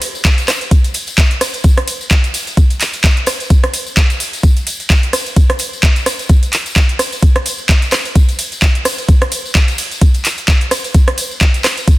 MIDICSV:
0, 0, Header, 1, 2, 480
1, 0, Start_track
1, 0, Tempo, 465116
1, 1696, Time_signature, 4, 2, 24, 8
1, 12367, End_track
2, 0, Start_track
2, 0, Title_t, "Drums"
2, 17, Note_on_c, 9, 46, 111
2, 17, Note_on_c, 9, 51, 77
2, 17, Note_on_c, 9, 54, 98
2, 120, Note_off_c, 9, 46, 0
2, 120, Note_off_c, 9, 51, 0
2, 121, Note_off_c, 9, 54, 0
2, 155, Note_on_c, 9, 54, 41
2, 256, Note_on_c, 9, 36, 110
2, 256, Note_on_c, 9, 42, 83
2, 259, Note_off_c, 9, 54, 0
2, 260, Note_on_c, 9, 39, 126
2, 260, Note_on_c, 9, 54, 51
2, 359, Note_off_c, 9, 36, 0
2, 359, Note_off_c, 9, 42, 0
2, 363, Note_off_c, 9, 39, 0
2, 363, Note_off_c, 9, 54, 0
2, 392, Note_on_c, 9, 42, 55
2, 401, Note_on_c, 9, 54, 38
2, 495, Note_off_c, 9, 42, 0
2, 496, Note_on_c, 9, 37, 77
2, 496, Note_on_c, 9, 46, 93
2, 496, Note_on_c, 9, 51, 75
2, 497, Note_off_c, 9, 54, 0
2, 497, Note_on_c, 9, 54, 95
2, 500, Note_on_c, 9, 39, 63
2, 599, Note_off_c, 9, 37, 0
2, 599, Note_off_c, 9, 46, 0
2, 599, Note_off_c, 9, 51, 0
2, 600, Note_off_c, 9, 54, 0
2, 603, Note_off_c, 9, 39, 0
2, 631, Note_on_c, 9, 54, 38
2, 632, Note_on_c, 9, 42, 40
2, 734, Note_off_c, 9, 54, 0
2, 735, Note_off_c, 9, 42, 0
2, 735, Note_on_c, 9, 54, 51
2, 736, Note_on_c, 9, 36, 127
2, 736, Note_on_c, 9, 42, 82
2, 838, Note_off_c, 9, 54, 0
2, 839, Note_off_c, 9, 36, 0
2, 839, Note_off_c, 9, 42, 0
2, 870, Note_on_c, 9, 54, 40
2, 872, Note_on_c, 9, 42, 54
2, 971, Note_off_c, 9, 54, 0
2, 971, Note_on_c, 9, 54, 83
2, 975, Note_off_c, 9, 42, 0
2, 976, Note_on_c, 9, 46, 102
2, 976, Note_on_c, 9, 51, 77
2, 1075, Note_off_c, 9, 54, 0
2, 1079, Note_off_c, 9, 46, 0
2, 1079, Note_off_c, 9, 51, 0
2, 1105, Note_on_c, 9, 54, 43
2, 1112, Note_on_c, 9, 42, 39
2, 1208, Note_off_c, 9, 54, 0
2, 1215, Note_off_c, 9, 42, 0
2, 1215, Note_on_c, 9, 36, 113
2, 1216, Note_on_c, 9, 42, 79
2, 1217, Note_on_c, 9, 54, 57
2, 1220, Note_on_c, 9, 39, 117
2, 1319, Note_off_c, 9, 36, 0
2, 1319, Note_off_c, 9, 42, 0
2, 1320, Note_off_c, 9, 54, 0
2, 1323, Note_off_c, 9, 39, 0
2, 1351, Note_on_c, 9, 42, 56
2, 1455, Note_off_c, 9, 42, 0
2, 1456, Note_on_c, 9, 37, 80
2, 1456, Note_on_c, 9, 46, 100
2, 1456, Note_on_c, 9, 51, 84
2, 1458, Note_on_c, 9, 54, 92
2, 1559, Note_off_c, 9, 37, 0
2, 1559, Note_off_c, 9, 46, 0
2, 1559, Note_off_c, 9, 51, 0
2, 1561, Note_off_c, 9, 54, 0
2, 1584, Note_on_c, 9, 54, 38
2, 1592, Note_on_c, 9, 42, 38
2, 1687, Note_off_c, 9, 54, 0
2, 1690, Note_on_c, 9, 54, 55
2, 1695, Note_off_c, 9, 42, 0
2, 1695, Note_on_c, 9, 36, 127
2, 1696, Note_on_c, 9, 42, 79
2, 1793, Note_off_c, 9, 54, 0
2, 1798, Note_off_c, 9, 36, 0
2, 1799, Note_off_c, 9, 42, 0
2, 1832, Note_on_c, 9, 37, 83
2, 1832, Note_on_c, 9, 42, 55
2, 1935, Note_off_c, 9, 37, 0
2, 1935, Note_off_c, 9, 42, 0
2, 1935, Note_on_c, 9, 54, 102
2, 1936, Note_on_c, 9, 46, 109
2, 1936, Note_on_c, 9, 51, 74
2, 2038, Note_off_c, 9, 54, 0
2, 2039, Note_off_c, 9, 46, 0
2, 2039, Note_off_c, 9, 51, 0
2, 2073, Note_on_c, 9, 54, 37
2, 2173, Note_off_c, 9, 54, 0
2, 2173, Note_on_c, 9, 54, 55
2, 2175, Note_on_c, 9, 36, 118
2, 2175, Note_on_c, 9, 42, 79
2, 2179, Note_on_c, 9, 39, 125
2, 2276, Note_off_c, 9, 54, 0
2, 2278, Note_off_c, 9, 36, 0
2, 2278, Note_off_c, 9, 42, 0
2, 2283, Note_off_c, 9, 39, 0
2, 2310, Note_on_c, 9, 54, 37
2, 2312, Note_on_c, 9, 42, 55
2, 2414, Note_off_c, 9, 54, 0
2, 2415, Note_off_c, 9, 42, 0
2, 2415, Note_on_c, 9, 46, 92
2, 2415, Note_on_c, 9, 51, 72
2, 2420, Note_on_c, 9, 54, 107
2, 2518, Note_off_c, 9, 46, 0
2, 2518, Note_off_c, 9, 51, 0
2, 2524, Note_off_c, 9, 54, 0
2, 2551, Note_on_c, 9, 42, 37
2, 2556, Note_on_c, 9, 54, 41
2, 2654, Note_off_c, 9, 42, 0
2, 2655, Note_on_c, 9, 36, 127
2, 2655, Note_on_c, 9, 42, 83
2, 2659, Note_off_c, 9, 54, 0
2, 2664, Note_on_c, 9, 54, 59
2, 2758, Note_off_c, 9, 36, 0
2, 2759, Note_off_c, 9, 42, 0
2, 2767, Note_off_c, 9, 54, 0
2, 2789, Note_on_c, 9, 54, 35
2, 2791, Note_on_c, 9, 42, 52
2, 2892, Note_off_c, 9, 54, 0
2, 2895, Note_off_c, 9, 42, 0
2, 2896, Note_on_c, 9, 46, 110
2, 2896, Note_on_c, 9, 51, 81
2, 2900, Note_on_c, 9, 39, 67
2, 2903, Note_on_c, 9, 54, 86
2, 2999, Note_off_c, 9, 46, 0
2, 2999, Note_off_c, 9, 51, 0
2, 3003, Note_off_c, 9, 39, 0
2, 3006, Note_off_c, 9, 54, 0
2, 3027, Note_on_c, 9, 54, 43
2, 3032, Note_on_c, 9, 42, 39
2, 3130, Note_off_c, 9, 54, 0
2, 3133, Note_on_c, 9, 54, 64
2, 3135, Note_off_c, 9, 42, 0
2, 3135, Note_on_c, 9, 36, 115
2, 3135, Note_on_c, 9, 42, 80
2, 3139, Note_on_c, 9, 39, 124
2, 3236, Note_off_c, 9, 54, 0
2, 3238, Note_off_c, 9, 36, 0
2, 3238, Note_off_c, 9, 42, 0
2, 3242, Note_off_c, 9, 39, 0
2, 3272, Note_on_c, 9, 42, 52
2, 3369, Note_on_c, 9, 54, 106
2, 3375, Note_off_c, 9, 42, 0
2, 3375, Note_on_c, 9, 37, 82
2, 3375, Note_on_c, 9, 46, 105
2, 3375, Note_on_c, 9, 51, 80
2, 3472, Note_off_c, 9, 54, 0
2, 3478, Note_off_c, 9, 37, 0
2, 3478, Note_off_c, 9, 46, 0
2, 3478, Note_off_c, 9, 51, 0
2, 3511, Note_on_c, 9, 42, 39
2, 3516, Note_on_c, 9, 54, 42
2, 3614, Note_off_c, 9, 54, 0
2, 3614, Note_on_c, 9, 54, 57
2, 3615, Note_off_c, 9, 42, 0
2, 3615, Note_on_c, 9, 36, 127
2, 3615, Note_on_c, 9, 42, 80
2, 3718, Note_off_c, 9, 36, 0
2, 3718, Note_off_c, 9, 54, 0
2, 3719, Note_off_c, 9, 42, 0
2, 3752, Note_on_c, 9, 37, 81
2, 3752, Note_on_c, 9, 42, 50
2, 3854, Note_on_c, 9, 54, 89
2, 3855, Note_off_c, 9, 37, 0
2, 3855, Note_off_c, 9, 42, 0
2, 3856, Note_on_c, 9, 46, 109
2, 3856, Note_on_c, 9, 51, 74
2, 3957, Note_off_c, 9, 54, 0
2, 3959, Note_off_c, 9, 46, 0
2, 3959, Note_off_c, 9, 51, 0
2, 3989, Note_on_c, 9, 54, 43
2, 4092, Note_off_c, 9, 54, 0
2, 4094, Note_on_c, 9, 54, 55
2, 4095, Note_on_c, 9, 36, 117
2, 4096, Note_on_c, 9, 42, 77
2, 4100, Note_on_c, 9, 39, 124
2, 4197, Note_off_c, 9, 54, 0
2, 4199, Note_off_c, 9, 36, 0
2, 4199, Note_off_c, 9, 42, 0
2, 4203, Note_off_c, 9, 39, 0
2, 4232, Note_on_c, 9, 42, 52
2, 4233, Note_on_c, 9, 54, 38
2, 4335, Note_off_c, 9, 42, 0
2, 4336, Note_off_c, 9, 54, 0
2, 4336, Note_on_c, 9, 46, 96
2, 4336, Note_on_c, 9, 51, 72
2, 4336, Note_on_c, 9, 54, 88
2, 4439, Note_off_c, 9, 46, 0
2, 4439, Note_off_c, 9, 51, 0
2, 4439, Note_off_c, 9, 54, 0
2, 4472, Note_on_c, 9, 42, 37
2, 4478, Note_on_c, 9, 54, 41
2, 4575, Note_off_c, 9, 42, 0
2, 4576, Note_on_c, 9, 36, 127
2, 4576, Note_on_c, 9, 42, 75
2, 4580, Note_off_c, 9, 54, 0
2, 4580, Note_on_c, 9, 54, 63
2, 4679, Note_off_c, 9, 36, 0
2, 4679, Note_off_c, 9, 42, 0
2, 4683, Note_off_c, 9, 54, 0
2, 4712, Note_on_c, 9, 54, 36
2, 4713, Note_on_c, 9, 42, 48
2, 4815, Note_off_c, 9, 54, 0
2, 4816, Note_off_c, 9, 42, 0
2, 4817, Note_on_c, 9, 46, 115
2, 4817, Note_on_c, 9, 51, 76
2, 4820, Note_on_c, 9, 54, 89
2, 4920, Note_off_c, 9, 46, 0
2, 4920, Note_off_c, 9, 51, 0
2, 4923, Note_off_c, 9, 54, 0
2, 4953, Note_on_c, 9, 42, 37
2, 4960, Note_on_c, 9, 54, 41
2, 5056, Note_off_c, 9, 42, 0
2, 5056, Note_on_c, 9, 36, 115
2, 5057, Note_on_c, 9, 42, 75
2, 5059, Note_off_c, 9, 54, 0
2, 5059, Note_on_c, 9, 54, 62
2, 5061, Note_on_c, 9, 39, 118
2, 5159, Note_off_c, 9, 36, 0
2, 5160, Note_off_c, 9, 42, 0
2, 5162, Note_off_c, 9, 54, 0
2, 5164, Note_off_c, 9, 39, 0
2, 5193, Note_on_c, 9, 42, 52
2, 5296, Note_off_c, 9, 42, 0
2, 5296, Note_on_c, 9, 37, 80
2, 5296, Note_on_c, 9, 46, 105
2, 5296, Note_on_c, 9, 51, 81
2, 5303, Note_on_c, 9, 54, 101
2, 5399, Note_off_c, 9, 37, 0
2, 5399, Note_off_c, 9, 46, 0
2, 5399, Note_off_c, 9, 51, 0
2, 5406, Note_off_c, 9, 54, 0
2, 5432, Note_on_c, 9, 42, 36
2, 5432, Note_on_c, 9, 54, 43
2, 5535, Note_off_c, 9, 54, 0
2, 5536, Note_off_c, 9, 42, 0
2, 5536, Note_on_c, 9, 36, 127
2, 5536, Note_on_c, 9, 42, 76
2, 5537, Note_on_c, 9, 54, 52
2, 5639, Note_off_c, 9, 36, 0
2, 5639, Note_off_c, 9, 42, 0
2, 5640, Note_off_c, 9, 54, 0
2, 5673, Note_on_c, 9, 37, 86
2, 5673, Note_on_c, 9, 42, 51
2, 5768, Note_on_c, 9, 54, 102
2, 5776, Note_off_c, 9, 37, 0
2, 5776, Note_off_c, 9, 42, 0
2, 5776, Note_on_c, 9, 46, 106
2, 5776, Note_on_c, 9, 51, 75
2, 5871, Note_off_c, 9, 54, 0
2, 5879, Note_off_c, 9, 46, 0
2, 5879, Note_off_c, 9, 51, 0
2, 5916, Note_on_c, 9, 54, 40
2, 6009, Note_off_c, 9, 54, 0
2, 6009, Note_on_c, 9, 54, 50
2, 6016, Note_on_c, 9, 36, 112
2, 6016, Note_on_c, 9, 42, 80
2, 6020, Note_on_c, 9, 39, 117
2, 6112, Note_off_c, 9, 54, 0
2, 6120, Note_off_c, 9, 36, 0
2, 6120, Note_off_c, 9, 42, 0
2, 6124, Note_off_c, 9, 39, 0
2, 6149, Note_on_c, 9, 54, 38
2, 6152, Note_on_c, 9, 42, 51
2, 6252, Note_off_c, 9, 54, 0
2, 6255, Note_off_c, 9, 42, 0
2, 6256, Note_on_c, 9, 37, 80
2, 6256, Note_on_c, 9, 46, 95
2, 6256, Note_on_c, 9, 51, 71
2, 6257, Note_on_c, 9, 54, 99
2, 6359, Note_off_c, 9, 37, 0
2, 6359, Note_off_c, 9, 46, 0
2, 6359, Note_off_c, 9, 51, 0
2, 6360, Note_off_c, 9, 54, 0
2, 6388, Note_on_c, 9, 54, 47
2, 6393, Note_on_c, 9, 42, 36
2, 6491, Note_off_c, 9, 54, 0
2, 6491, Note_on_c, 9, 54, 53
2, 6496, Note_off_c, 9, 42, 0
2, 6496, Note_on_c, 9, 36, 127
2, 6497, Note_on_c, 9, 42, 76
2, 6595, Note_off_c, 9, 54, 0
2, 6600, Note_off_c, 9, 36, 0
2, 6600, Note_off_c, 9, 42, 0
2, 6633, Note_on_c, 9, 42, 50
2, 6633, Note_on_c, 9, 54, 38
2, 6736, Note_off_c, 9, 42, 0
2, 6737, Note_off_c, 9, 54, 0
2, 6737, Note_on_c, 9, 46, 110
2, 6737, Note_on_c, 9, 51, 78
2, 6739, Note_on_c, 9, 54, 91
2, 6741, Note_on_c, 9, 39, 62
2, 6840, Note_off_c, 9, 46, 0
2, 6840, Note_off_c, 9, 51, 0
2, 6842, Note_off_c, 9, 54, 0
2, 6844, Note_off_c, 9, 39, 0
2, 6872, Note_on_c, 9, 54, 42
2, 6873, Note_on_c, 9, 42, 36
2, 6975, Note_off_c, 9, 54, 0
2, 6976, Note_off_c, 9, 42, 0
2, 6976, Note_on_c, 9, 36, 114
2, 6976, Note_on_c, 9, 54, 54
2, 6977, Note_on_c, 9, 42, 74
2, 6981, Note_on_c, 9, 39, 116
2, 7079, Note_off_c, 9, 54, 0
2, 7080, Note_off_c, 9, 36, 0
2, 7080, Note_off_c, 9, 42, 0
2, 7084, Note_off_c, 9, 39, 0
2, 7113, Note_on_c, 9, 42, 52
2, 7216, Note_off_c, 9, 42, 0
2, 7216, Note_on_c, 9, 37, 81
2, 7216, Note_on_c, 9, 46, 105
2, 7216, Note_on_c, 9, 51, 77
2, 7220, Note_on_c, 9, 54, 88
2, 7319, Note_off_c, 9, 37, 0
2, 7319, Note_off_c, 9, 46, 0
2, 7319, Note_off_c, 9, 51, 0
2, 7323, Note_off_c, 9, 54, 0
2, 7352, Note_on_c, 9, 42, 36
2, 7356, Note_on_c, 9, 54, 45
2, 7456, Note_off_c, 9, 42, 0
2, 7456, Note_off_c, 9, 54, 0
2, 7456, Note_on_c, 9, 36, 124
2, 7456, Note_on_c, 9, 42, 82
2, 7456, Note_on_c, 9, 54, 48
2, 7559, Note_off_c, 9, 42, 0
2, 7559, Note_off_c, 9, 54, 0
2, 7560, Note_off_c, 9, 36, 0
2, 7593, Note_on_c, 9, 37, 90
2, 7593, Note_on_c, 9, 42, 51
2, 7696, Note_off_c, 9, 37, 0
2, 7696, Note_off_c, 9, 42, 0
2, 7696, Note_on_c, 9, 46, 105
2, 7696, Note_on_c, 9, 51, 82
2, 7701, Note_on_c, 9, 54, 99
2, 7799, Note_off_c, 9, 46, 0
2, 7799, Note_off_c, 9, 51, 0
2, 7804, Note_off_c, 9, 54, 0
2, 7827, Note_on_c, 9, 54, 42
2, 7930, Note_off_c, 9, 54, 0
2, 7936, Note_on_c, 9, 36, 111
2, 7936, Note_on_c, 9, 42, 76
2, 7940, Note_on_c, 9, 39, 116
2, 7943, Note_on_c, 9, 54, 48
2, 8039, Note_off_c, 9, 36, 0
2, 8040, Note_off_c, 9, 42, 0
2, 8044, Note_off_c, 9, 39, 0
2, 8046, Note_off_c, 9, 54, 0
2, 8070, Note_on_c, 9, 54, 34
2, 8072, Note_on_c, 9, 42, 48
2, 8170, Note_off_c, 9, 54, 0
2, 8170, Note_on_c, 9, 54, 95
2, 8176, Note_off_c, 9, 42, 0
2, 8176, Note_on_c, 9, 37, 82
2, 8176, Note_on_c, 9, 46, 90
2, 8176, Note_on_c, 9, 51, 76
2, 8180, Note_on_c, 9, 39, 57
2, 8273, Note_off_c, 9, 54, 0
2, 8279, Note_off_c, 9, 37, 0
2, 8279, Note_off_c, 9, 46, 0
2, 8279, Note_off_c, 9, 51, 0
2, 8283, Note_off_c, 9, 39, 0
2, 8312, Note_on_c, 9, 42, 36
2, 8312, Note_on_c, 9, 54, 36
2, 8415, Note_off_c, 9, 42, 0
2, 8415, Note_off_c, 9, 54, 0
2, 8416, Note_on_c, 9, 36, 121
2, 8416, Note_on_c, 9, 42, 75
2, 8416, Note_on_c, 9, 54, 58
2, 8519, Note_off_c, 9, 36, 0
2, 8519, Note_off_c, 9, 42, 0
2, 8520, Note_off_c, 9, 54, 0
2, 8552, Note_on_c, 9, 42, 51
2, 8555, Note_on_c, 9, 54, 36
2, 8655, Note_off_c, 9, 42, 0
2, 8655, Note_off_c, 9, 54, 0
2, 8655, Note_on_c, 9, 46, 105
2, 8655, Note_on_c, 9, 51, 80
2, 8655, Note_on_c, 9, 54, 87
2, 8758, Note_off_c, 9, 46, 0
2, 8758, Note_off_c, 9, 51, 0
2, 8758, Note_off_c, 9, 54, 0
2, 8792, Note_on_c, 9, 42, 36
2, 8800, Note_on_c, 9, 54, 41
2, 8895, Note_off_c, 9, 42, 0
2, 8896, Note_on_c, 9, 36, 109
2, 8896, Note_on_c, 9, 42, 76
2, 8900, Note_on_c, 9, 39, 114
2, 8901, Note_off_c, 9, 54, 0
2, 8901, Note_on_c, 9, 54, 54
2, 8999, Note_off_c, 9, 36, 0
2, 8999, Note_off_c, 9, 42, 0
2, 9003, Note_off_c, 9, 39, 0
2, 9004, Note_off_c, 9, 54, 0
2, 9032, Note_on_c, 9, 42, 52
2, 9134, Note_on_c, 9, 54, 103
2, 9135, Note_off_c, 9, 42, 0
2, 9136, Note_on_c, 9, 37, 88
2, 9136, Note_on_c, 9, 46, 93
2, 9136, Note_on_c, 9, 51, 86
2, 9237, Note_off_c, 9, 54, 0
2, 9239, Note_off_c, 9, 37, 0
2, 9239, Note_off_c, 9, 46, 0
2, 9239, Note_off_c, 9, 51, 0
2, 9270, Note_on_c, 9, 54, 41
2, 9273, Note_on_c, 9, 42, 36
2, 9374, Note_off_c, 9, 54, 0
2, 9376, Note_off_c, 9, 42, 0
2, 9376, Note_on_c, 9, 36, 119
2, 9376, Note_on_c, 9, 42, 83
2, 9382, Note_on_c, 9, 54, 43
2, 9479, Note_off_c, 9, 36, 0
2, 9479, Note_off_c, 9, 42, 0
2, 9485, Note_off_c, 9, 54, 0
2, 9512, Note_on_c, 9, 37, 87
2, 9512, Note_on_c, 9, 42, 53
2, 9615, Note_off_c, 9, 37, 0
2, 9615, Note_off_c, 9, 42, 0
2, 9615, Note_on_c, 9, 46, 102
2, 9615, Note_on_c, 9, 51, 82
2, 9615, Note_on_c, 9, 54, 88
2, 9718, Note_off_c, 9, 46, 0
2, 9718, Note_off_c, 9, 51, 0
2, 9718, Note_off_c, 9, 54, 0
2, 9758, Note_on_c, 9, 54, 39
2, 9855, Note_on_c, 9, 42, 82
2, 9856, Note_off_c, 9, 54, 0
2, 9856, Note_on_c, 9, 36, 108
2, 9856, Note_on_c, 9, 54, 52
2, 9859, Note_on_c, 9, 39, 115
2, 9958, Note_off_c, 9, 42, 0
2, 9959, Note_off_c, 9, 36, 0
2, 9959, Note_off_c, 9, 54, 0
2, 9963, Note_off_c, 9, 39, 0
2, 9991, Note_on_c, 9, 42, 53
2, 9993, Note_on_c, 9, 54, 39
2, 10095, Note_off_c, 9, 42, 0
2, 10095, Note_off_c, 9, 54, 0
2, 10095, Note_on_c, 9, 46, 91
2, 10095, Note_on_c, 9, 51, 80
2, 10095, Note_on_c, 9, 54, 98
2, 10198, Note_off_c, 9, 46, 0
2, 10198, Note_off_c, 9, 51, 0
2, 10198, Note_off_c, 9, 54, 0
2, 10231, Note_on_c, 9, 42, 37
2, 10238, Note_on_c, 9, 54, 42
2, 10335, Note_off_c, 9, 42, 0
2, 10335, Note_on_c, 9, 42, 80
2, 10336, Note_on_c, 9, 36, 121
2, 10337, Note_off_c, 9, 54, 0
2, 10337, Note_on_c, 9, 54, 55
2, 10438, Note_off_c, 9, 42, 0
2, 10439, Note_off_c, 9, 36, 0
2, 10440, Note_off_c, 9, 54, 0
2, 10467, Note_on_c, 9, 54, 37
2, 10471, Note_on_c, 9, 42, 53
2, 10570, Note_off_c, 9, 54, 0
2, 10574, Note_off_c, 9, 42, 0
2, 10575, Note_on_c, 9, 46, 104
2, 10575, Note_on_c, 9, 51, 82
2, 10578, Note_on_c, 9, 54, 84
2, 10579, Note_on_c, 9, 39, 59
2, 10679, Note_off_c, 9, 46, 0
2, 10679, Note_off_c, 9, 51, 0
2, 10681, Note_off_c, 9, 54, 0
2, 10683, Note_off_c, 9, 39, 0
2, 10711, Note_on_c, 9, 42, 38
2, 10713, Note_on_c, 9, 54, 36
2, 10815, Note_off_c, 9, 42, 0
2, 10815, Note_on_c, 9, 42, 75
2, 10816, Note_off_c, 9, 54, 0
2, 10816, Note_on_c, 9, 36, 106
2, 10817, Note_on_c, 9, 54, 56
2, 10819, Note_on_c, 9, 39, 107
2, 10919, Note_off_c, 9, 36, 0
2, 10919, Note_off_c, 9, 42, 0
2, 10920, Note_off_c, 9, 54, 0
2, 10923, Note_off_c, 9, 39, 0
2, 10952, Note_on_c, 9, 42, 51
2, 11055, Note_off_c, 9, 42, 0
2, 11055, Note_on_c, 9, 37, 89
2, 11055, Note_on_c, 9, 46, 95
2, 11055, Note_on_c, 9, 51, 85
2, 11060, Note_on_c, 9, 54, 88
2, 11158, Note_off_c, 9, 37, 0
2, 11158, Note_off_c, 9, 46, 0
2, 11158, Note_off_c, 9, 51, 0
2, 11163, Note_off_c, 9, 54, 0
2, 11191, Note_on_c, 9, 42, 37
2, 11196, Note_on_c, 9, 54, 43
2, 11294, Note_off_c, 9, 42, 0
2, 11294, Note_on_c, 9, 42, 85
2, 11296, Note_on_c, 9, 36, 119
2, 11299, Note_off_c, 9, 54, 0
2, 11299, Note_on_c, 9, 54, 52
2, 11398, Note_off_c, 9, 42, 0
2, 11399, Note_off_c, 9, 36, 0
2, 11403, Note_off_c, 9, 54, 0
2, 11431, Note_on_c, 9, 37, 86
2, 11431, Note_on_c, 9, 42, 54
2, 11534, Note_off_c, 9, 37, 0
2, 11534, Note_off_c, 9, 42, 0
2, 11535, Note_on_c, 9, 46, 101
2, 11535, Note_on_c, 9, 51, 84
2, 11535, Note_on_c, 9, 54, 96
2, 11638, Note_off_c, 9, 46, 0
2, 11638, Note_off_c, 9, 51, 0
2, 11638, Note_off_c, 9, 54, 0
2, 11675, Note_on_c, 9, 54, 39
2, 11769, Note_off_c, 9, 54, 0
2, 11769, Note_on_c, 9, 54, 49
2, 11775, Note_on_c, 9, 42, 85
2, 11776, Note_on_c, 9, 36, 101
2, 11779, Note_on_c, 9, 39, 116
2, 11873, Note_off_c, 9, 54, 0
2, 11878, Note_off_c, 9, 42, 0
2, 11879, Note_off_c, 9, 36, 0
2, 11882, Note_off_c, 9, 39, 0
2, 11912, Note_on_c, 9, 42, 53
2, 11913, Note_on_c, 9, 54, 36
2, 12015, Note_off_c, 9, 42, 0
2, 12016, Note_off_c, 9, 54, 0
2, 12016, Note_on_c, 9, 37, 75
2, 12016, Note_on_c, 9, 46, 86
2, 12016, Note_on_c, 9, 51, 83
2, 12016, Note_on_c, 9, 54, 80
2, 12020, Note_on_c, 9, 39, 60
2, 12119, Note_off_c, 9, 37, 0
2, 12119, Note_off_c, 9, 46, 0
2, 12119, Note_off_c, 9, 51, 0
2, 12119, Note_off_c, 9, 54, 0
2, 12123, Note_off_c, 9, 39, 0
2, 12152, Note_on_c, 9, 42, 39
2, 12153, Note_on_c, 9, 54, 39
2, 12255, Note_off_c, 9, 42, 0
2, 12256, Note_off_c, 9, 54, 0
2, 12256, Note_on_c, 9, 36, 122
2, 12256, Note_on_c, 9, 42, 84
2, 12259, Note_on_c, 9, 54, 51
2, 12359, Note_off_c, 9, 36, 0
2, 12359, Note_off_c, 9, 42, 0
2, 12362, Note_off_c, 9, 54, 0
2, 12367, End_track
0, 0, End_of_file